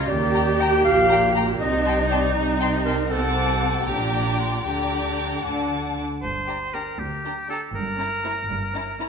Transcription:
Already playing: viola section F4
0.08 double bass section D#2, cello section D#3, viola section G4, clarinet D5
0.35 violin section G5 A#5
0.60 clarinet G5, violin section G5 A#5
0.84 double bass section A#1, cello section A#2, clarinet F5
1.10 violin section G5 A#5
1.35 violin section G5 A#5
1.60 double bass section C2, cello section C3, viola section D#4, clarinet D#5
1.86 violin section G5 A5 C6
2.09 clarinet D5, violin section G5 A5 C6
2.34 double bass section C2, cello section C3, clarinet D#4
2.61 violin section G5 A5 C6
2.85 clarinet A#4, violin section G5 A5 C6
3.10 double bass section C2, cello section C3, viola section C4, clarinet A4, violin section F#5 A5 D6
3.87 double bass section A#1, cello section A#2, viola section D4, clarinet G4, violin section G5 A#5 D6
4.39 clarinet F4
4.66 double bass section D2, cello section D3, viola section D4, clarinet G4, violin section G5 A#5 D6
5.45 double bass section D2, cello section D3, violin section F#5 A5 D6
6.22 double bass section G1, cello section G2, oboe C5, triangle
6.47 viola section D4, violin section G4 A#5
6.74 viola section D4, violin section G4 A#5, oboe A#4
6.98 cello section D2, double bass section D2, oboe G4
7.24 viola section D4, violin section G4 A#5
7.49 viola section D4, violin section G4 A#5, oboe A4
7.74 double bass section G1, cello section G2, oboe A#4
7.98 viola section C#4, violin section E4 A#5
8.24 viola section C#4, violin section E4 A#5
8.50 double bass section G1, cello section G2
8.74 viola section C#4, violin section E4 A#5
9.00 viola section C#4, violin section E4 A#5

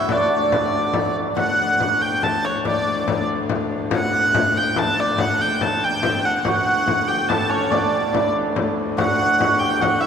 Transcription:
Already playing: viola da gamba D2, hammered dulcimer E4 F#4, hurdy-gurdy E5
0.09 hammered dulcimer D4, hurdy-gurdy D5, frame drum
0.31 frame drum
0.52 frame drum
0.73 frame drum
0.93 frame drum
1.37 viola da gamba D2, hurdy-gurdy F#5, frame drum
1.80 frame drum
2.02 hurdy-gurdy G5, frame drum
2.23 hurdy-gurdy A5, frame drum
2.45 hurdy-gurdy C#5
2.65 hurdy-gurdy D5, frame drum
3.08 frame drum
3.28 frame drum
3.49 frame drum
3.91 frame drum
3.95 hurdy-gurdy F#5
4.34 frame drum
4.55 hurdy-gurdy G5, frame drum
4.76 hurdy-gurdy A5, frame drum
5.00 hurdy-gurdy D5
5.18 hurdy-gurdy F#5, frame drum
5.41 hurdy-gurdy G5
5.61 hurdy-gurdy A5, frame drum
5.84 hurdy-gurdy G5
6.03 frame drum
6.24 hurdy-gurdy F#5, frame drum
6.45 viola da gamba D2, hammered dulcimer F#4, hurdy-gurdy F#5, frame drum
6.88 frame drum
7.08 hammered dulcimer G4, hurdy-gurdy G5, frame drum
7.29 hammered dulcimer A4, hurdy-gurdy A5, frame drum
7.50 hammered dulcimer C#4, hurdy-gurdy C#5
7.71 hammered dulcimer D4, hurdy-gurdy D5, frame drum
8.13 hammered dulcimer E4, frame drum
8.36 frame drum
8.56 frame drum
8.97 hammered dulcimer F#4, hurdy-gurdy F#5, frame drum
9.39 hammered dulcimer F#4, frame drum
9.59 hammered dulcimer G4, hurdy-gurdy G5, frame drum
9.79 hammered dulcimer F#4, hurdy-gurdy F#5, frame drum
10.01 hammered dulcimer E4, hurdy-gurdy E5

